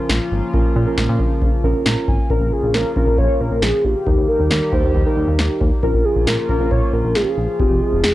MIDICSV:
0, 0, Header, 1, 6, 480
1, 0, Start_track
1, 0, Tempo, 441176
1, 584, Time_signature, 4, 2, 24, 8
1, 8859, End_track
2, 0, Start_track
2, 0, Title_t, "Soft synth lead"
2, 0, Program_c, 0, 80
2, 2505, Note_on_c, 0, 70, 97
2, 2748, Note_on_c, 0, 68, 87
2, 2764, Note_off_c, 0, 70, 0
2, 2983, Note_off_c, 0, 68, 0
2, 2990, Note_on_c, 0, 70, 94
2, 3210, Note_off_c, 0, 70, 0
2, 3227, Note_on_c, 0, 70, 99
2, 3449, Note_off_c, 0, 70, 0
2, 3465, Note_on_c, 0, 73, 108
2, 3706, Note_on_c, 0, 70, 98
2, 3722, Note_off_c, 0, 73, 0
2, 3944, Note_on_c, 0, 68, 94
2, 3960, Note_off_c, 0, 70, 0
2, 4186, Note_on_c, 0, 67, 95
2, 4203, Note_off_c, 0, 68, 0
2, 4660, Note_on_c, 0, 70, 88
2, 4676, Note_off_c, 0, 67, 0
2, 4895, Note_off_c, 0, 70, 0
2, 4901, Note_on_c, 0, 70, 84
2, 5349, Note_off_c, 0, 70, 0
2, 6343, Note_on_c, 0, 70, 94
2, 6581, Note_on_c, 0, 68, 89
2, 6598, Note_off_c, 0, 70, 0
2, 6821, Note_on_c, 0, 70, 100
2, 6838, Note_off_c, 0, 68, 0
2, 7057, Note_off_c, 0, 70, 0
2, 7063, Note_on_c, 0, 70, 103
2, 7287, Note_off_c, 0, 70, 0
2, 7303, Note_on_c, 0, 73, 109
2, 7541, Note_on_c, 0, 70, 98
2, 7557, Note_off_c, 0, 73, 0
2, 7784, Note_on_c, 0, 68, 94
2, 7800, Note_off_c, 0, 70, 0
2, 7859, Note_on_c, 0, 67, 78
2, 7875, Note_off_c, 0, 68, 0
2, 7933, Note_on_c, 0, 68, 94
2, 7949, Note_off_c, 0, 67, 0
2, 8262, Note_on_c, 0, 67, 91
2, 8278, Note_off_c, 0, 68, 0
2, 8505, Note_on_c, 0, 68, 82
2, 8522, Note_off_c, 0, 67, 0
2, 8742, Note_off_c, 0, 68, 0
2, 8748, Note_on_c, 0, 68, 79
2, 8859, Note_off_c, 0, 68, 0
2, 8859, End_track
3, 0, Start_track
3, 0, Title_t, "Synth keys"
3, 0, Program_c, 1, 88
3, 0, Note_on_c, 1, 61, 90
3, 0, Note_on_c, 1, 65, 80
3, 0, Note_on_c, 1, 70, 100
3, 145, Note_off_c, 1, 70, 0
3, 146, Note_off_c, 1, 61, 0
3, 146, Note_off_c, 1, 65, 0
3, 584, Note_on_c, 1, 70, 97
3, 585, Note_on_c, 1, 61, 88
3, 585, Note_on_c, 1, 65, 81
3, 870, Note_off_c, 1, 61, 0
3, 870, Note_off_c, 1, 65, 0
3, 870, Note_off_c, 1, 70, 0
3, 945, Note_on_c, 1, 61, 87
3, 945, Note_on_c, 1, 65, 76
3, 945, Note_on_c, 1, 70, 94
3, 1610, Note_off_c, 1, 61, 0
3, 1610, Note_off_c, 1, 65, 0
3, 1610, Note_off_c, 1, 70, 0
3, 1784, Note_on_c, 1, 61, 91
3, 1784, Note_on_c, 1, 65, 78
3, 1785, Note_on_c, 1, 70, 97
3, 2023, Note_on_c, 1, 82, 72
3, 2247, Note_off_c, 1, 82, 0
3, 2263, Note_on_c, 1, 80, 66
3, 2355, Note_off_c, 1, 61, 0
3, 2355, Note_off_c, 1, 65, 0
3, 2355, Note_off_c, 1, 70, 0
3, 2487, Note_off_c, 1, 80, 0
3, 2503, Note_on_c, 1, 65, 65
3, 2503, Note_on_c, 1, 70, 80
3, 2504, Note_on_c, 1, 61, 71
3, 3074, Note_off_c, 1, 65, 0
3, 3074, Note_off_c, 1, 70, 0
3, 3075, Note_off_c, 1, 61, 0
3, 3223, Note_on_c, 1, 61, 71
3, 3224, Note_on_c, 1, 65, 66
3, 3224, Note_on_c, 1, 70, 80
3, 3319, Note_off_c, 1, 61, 0
3, 3319, Note_off_c, 1, 65, 0
3, 3319, Note_off_c, 1, 70, 0
3, 3343, Note_on_c, 1, 61, 70
3, 3343, Note_on_c, 1, 65, 66
3, 3344, Note_on_c, 1, 70, 82
3, 4105, Note_off_c, 1, 61, 0
3, 4105, Note_off_c, 1, 65, 0
3, 4105, Note_off_c, 1, 70, 0
3, 4422, Note_on_c, 1, 70, 80
3, 4423, Note_on_c, 1, 63, 71
3, 4423, Note_on_c, 1, 67, 67
3, 4994, Note_off_c, 1, 63, 0
3, 4994, Note_off_c, 1, 67, 0
3, 4994, Note_off_c, 1, 70, 0
3, 5144, Note_on_c, 1, 63, 73
3, 5144, Note_on_c, 1, 67, 67
3, 5144, Note_on_c, 1, 72, 80
3, 5429, Note_off_c, 1, 63, 0
3, 5429, Note_off_c, 1, 67, 0
3, 5429, Note_off_c, 1, 72, 0
3, 5503, Note_on_c, 1, 70, 94
3, 5504, Note_on_c, 1, 63, 85
3, 5504, Note_on_c, 1, 67, 78
3, 6170, Note_off_c, 1, 63, 0
3, 6170, Note_off_c, 1, 67, 0
3, 6170, Note_off_c, 1, 70, 0
3, 6343, Note_on_c, 1, 65, 68
3, 6343, Note_on_c, 1, 70, 83
3, 6344, Note_on_c, 1, 61, 74
3, 6914, Note_off_c, 1, 65, 0
3, 6914, Note_off_c, 1, 70, 0
3, 6915, Note_off_c, 1, 61, 0
3, 7062, Note_on_c, 1, 61, 75
3, 7062, Note_on_c, 1, 65, 66
3, 7062, Note_on_c, 1, 70, 80
3, 7158, Note_off_c, 1, 61, 0
3, 7158, Note_off_c, 1, 65, 0
3, 7158, Note_off_c, 1, 70, 0
3, 7183, Note_on_c, 1, 61, 75
3, 7183, Note_on_c, 1, 65, 67
3, 7183, Note_on_c, 1, 70, 81
3, 7944, Note_off_c, 1, 61, 0
3, 7944, Note_off_c, 1, 65, 0
3, 7944, Note_off_c, 1, 70, 0
3, 8263, Note_on_c, 1, 60, 73
3, 8263, Note_on_c, 1, 65, 67
3, 8263, Note_on_c, 1, 68, 83
3, 8834, Note_off_c, 1, 60, 0
3, 8834, Note_off_c, 1, 65, 0
3, 8834, Note_off_c, 1, 68, 0
3, 8859, End_track
4, 0, Start_track
4, 0, Title_t, "Analog synth pad"
4, 0, Program_c, 2, 89
4, 0, Note_on_c, 2, 49, 81
4, 0, Note_on_c, 2, 53, 76
4, 0, Note_on_c, 2, 58, 72
4, 0, Note_on_c, 2, 65, 89
4, 2465, Note_off_c, 2, 53, 0
4, 2465, Note_off_c, 2, 65, 0
4, 2466, Note_off_c, 2, 49, 0
4, 2466, Note_off_c, 2, 58, 0
4, 2505, Note_on_c, 2, 49, 80
4, 2505, Note_on_c, 2, 53, 74
4, 2505, Note_on_c, 2, 58, 73
4, 2505, Note_on_c, 2, 65, 85
4, 4405, Note_off_c, 2, 49, 0
4, 4405, Note_off_c, 2, 65, 0
4, 4406, Note_off_c, 2, 53, 0
4, 4421, Note_on_c, 2, 51, 79
4, 4423, Note_on_c, 2, 55, 71
4, 4424, Note_on_c, 2, 67, 86
4, 6306, Note_off_c, 2, 58, 0
4, 6323, Note_off_c, 2, 51, 0
4, 6324, Note_off_c, 2, 55, 0
4, 6325, Note_off_c, 2, 67, 0
4, 6341, Note_on_c, 2, 53, 73
4, 6341, Note_on_c, 2, 58, 73
4, 6342, Note_on_c, 2, 49, 82
4, 6343, Note_on_c, 2, 65, 88
4, 8243, Note_off_c, 2, 58, 0
4, 8244, Note_off_c, 2, 49, 0
4, 8263, Note_on_c, 2, 48, 79
4, 8264, Note_on_c, 2, 56, 76
4, 8859, Note_off_c, 2, 48, 0
4, 8859, Note_off_c, 2, 53, 0
4, 8859, Note_off_c, 2, 56, 0
4, 8859, Note_off_c, 2, 65, 0
4, 8859, End_track
5, 0, Start_track
5, 0, Title_t, "Analog synth bass"
5, 0, Program_c, 3, 38
5, 104, Note_on_c, 3, 34, 104
5, 214, Note_off_c, 3, 34, 0
5, 346, Note_on_c, 3, 32, 88
5, 454, Note_off_c, 3, 32, 0
5, 585, Note_on_c, 3, 34, 99
5, 694, Note_off_c, 3, 34, 0
5, 826, Note_on_c, 3, 46, 104
5, 934, Note_off_c, 3, 46, 0
5, 1065, Note_on_c, 3, 34, 105
5, 1174, Note_off_c, 3, 34, 0
5, 1186, Note_on_c, 3, 46, 99
5, 1294, Note_off_c, 3, 46, 0
5, 1303, Note_on_c, 3, 34, 97
5, 1413, Note_off_c, 3, 34, 0
5, 1542, Note_on_c, 3, 34, 104
5, 1652, Note_off_c, 3, 34, 0
5, 1784, Note_on_c, 3, 34, 101
5, 1893, Note_off_c, 3, 34, 0
5, 2024, Note_on_c, 3, 34, 101
5, 2133, Note_off_c, 3, 34, 0
5, 2264, Note_on_c, 3, 32, 89
5, 2373, Note_off_c, 3, 32, 0
5, 2504, Note_on_c, 3, 34, 108
5, 2613, Note_off_c, 3, 34, 0
5, 2624, Note_on_c, 3, 34, 97
5, 2733, Note_off_c, 3, 34, 0
5, 2864, Note_on_c, 3, 34, 105
5, 2973, Note_off_c, 3, 34, 0
5, 2983, Note_on_c, 3, 34, 105
5, 3093, Note_off_c, 3, 34, 0
5, 3221, Note_on_c, 3, 34, 104
5, 3332, Note_off_c, 3, 34, 0
5, 3342, Note_on_c, 3, 34, 103
5, 3452, Note_off_c, 3, 34, 0
5, 3462, Note_on_c, 3, 34, 100
5, 3572, Note_off_c, 3, 34, 0
5, 3702, Note_on_c, 3, 34, 101
5, 3812, Note_off_c, 3, 34, 0
5, 3823, Note_on_c, 3, 34, 98
5, 3933, Note_off_c, 3, 34, 0
5, 3943, Note_on_c, 3, 34, 99
5, 4053, Note_off_c, 3, 34, 0
5, 4184, Note_on_c, 3, 34, 103
5, 4293, Note_off_c, 3, 34, 0
5, 4424, Note_on_c, 3, 39, 102
5, 4533, Note_off_c, 3, 39, 0
5, 4542, Note_on_c, 3, 39, 94
5, 4653, Note_off_c, 3, 39, 0
5, 4783, Note_on_c, 3, 39, 93
5, 4893, Note_off_c, 3, 39, 0
5, 4903, Note_on_c, 3, 39, 98
5, 5013, Note_off_c, 3, 39, 0
5, 5141, Note_on_c, 3, 39, 100
5, 5252, Note_off_c, 3, 39, 0
5, 5263, Note_on_c, 3, 39, 99
5, 5373, Note_off_c, 3, 39, 0
5, 5382, Note_on_c, 3, 39, 106
5, 5492, Note_off_c, 3, 39, 0
5, 5623, Note_on_c, 3, 39, 101
5, 5733, Note_off_c, 3, 39, 0
5, 5745, Note_on_c, 3, 39, 95
5, 5854, Note_off_c, 3, 39, 0
5, 5864, Note_on_c, 3, 39, 98
5, 5974, Note_off_c, 3, 39, 0
5, 6104, Note_on_c, 3, 39, 103
5, 6213, Note_off_c, 3, 39, 0
5, 6344, Note_on_c, 3, 34, 109
5, 6453, Note_off_c, 3, 34, 0
5, 6463, Note_on_c, 3, 34, 93
5, 6573, Note_off_c, 3, 34, 0
5, 6704, Note_on_c, 3, 34, 93
5, 6813, Note_off_c, 3, 34, 0
5, 6824, Note_on_c, 3, 34, 99
5, 6933, Note_off_c, 3, 34, 0
5, 7062, Note_on_c, 3, 34, 97
5, 7172, Note_off_c, 3, 34, 0
5, 7183, Note_on_c, 3, 34, 98
5, 7293, Note_off_c, 3, 34, 0
5, 7302, Note_on_c, 3, 34, 102
5, 7412, Note_off_c, 3, 34, 0
5, 7544, Note_on_c, 3, 34, 98
5, 7653, Note_off_c, 3, 34, 0
5, 7664, Note_on_c, 3, 34, 92
5, 7773, Note_off_c, 3, 34, 0
5, 7783, Note_on_c, 3, 34, 104
5, 7893, Note_off_c, 3, 34, 0
5, 8024, Note_on_c, 3, 34, 98
5, 8133, Note_off_c, 3, 34, 0
5, 8265, Note_on_c, 3, 29, 100
5, 8374, Note_off_c, 3, 29, 0
5, 8385, Note_on_c, 3, 29, 92
5, 8494, Note_off_c, 3, 29, 0
5, 8624, Note_on_c, 3, 29, 95
5, 8733, Note_off_c, 3, 29, 0
5, 8743, Note_on_c, 3, 29, 99
5, 8853, Note_off_c, 3, 29, 0
5, 8859, End_track
6, 0, Start_track
6, 0, Title_t, "Drums"
6, 103, Note_on_c, 9, 38, 113
6, 212, Note_off_c, 9, 38, 0
6, 585, Note_on_c, 9, 36, 116
6, 693, Note_off_c, 9, 36, 0
6, 1063, Note_on_c, 9, 38, 112
6, 1172, Note_off_c, 9, 38, 0
6, 1302, Note_on_c, 9, 36, 89
6, 1411, Note_off_c, 9, 36, 0
6, 1543, Note_on_c, 9, 36, 93
6, 1651, Note_off_c, 9, 36, 0
6, 2022, Note_on_c, 9, 38, 111
6, 2130, Note_off_c, 9, 38, 0
6, 2264, Note_on_c, 9, 36, 99
6, 2373, Note_off_c, 9, 36, 0
6, 2504, Note_on_c, 9, 36, 118
6, 2613, Note_off_c, 9, 36, 0
6, 2983, Note_on_c, 9, 38, 108
6, 3092, Note_off_c, 9, 38, 0
6, 3221, Note_on_c, 9, 36, 91
6, 3330, Note_off_c, 9, 36, 0
6, 3462, Note_on_c, 9, 36, 92
6, 3571, Note_off_c, 9, 36, 0
6, 3942, Note_on_c, 9, 38, 111
6, 4051, Note_off_c, 9, 38, 0
6, 4424, Note_on_c, 9, 36, 111
6, 4533, Note_off_c, 9, 36, 0
6, 4903, Note_on_c, 9, 38, 109
6, 5012, Note_off_c, 9, 38, 0
6, 5141, Note_on_c, 9, 36, 89
6, 5250, Note_off_c, 9, 36, 0
6, 5382, Note_on_c, 9, 36, 92
6, 5491, Note_off_c, 9, 36, 0
6, 5863, Note_on_c, 9, 38, 109
6, 5972, Note_off_c, 9, 38, 0
6, 6104, Note_on_c, 9, 36, 101
6, 6212, Note_off_c, 9, 36, 0
6, 6344, Note_on_c, 9, 36, 118
6, 6452, Note_off_c, 9, 36, 0
6, 6824, Note_on_c, 9, 38, 111
6, 6933, Note_off_c, 9, 38, 0
6, 7061, Note_on_c, 9, 36, 89
6, 7170, Note_off_c, 9, 36, 0
6, 7302, Note_on_c, 9, 36, 98
6, 7411, Note_off_c, 9, 36, 0
6, 7783, Note_on_c, 9, 38, 105
6, 7891, Note_off_c, 9, 38, 0
6, 8265, Note_on_c, 9, 36, 112
6, 8373, Note_off_c, 9, 36, 0
6, 8744, Note_on_c, 9, 38, 109
6, 8853, Note_off_c, 9, 38, 0
6, 8859, End_track
0, 0, End_of_file